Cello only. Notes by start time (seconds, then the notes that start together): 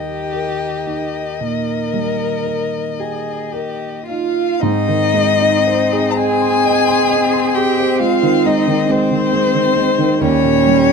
Already playing: D#3
4.06 F4
4.60 D#4
6.17 G#4
7.56 G4
8.00 F4
8.45 D#4
8.89 C4
10.22 C#4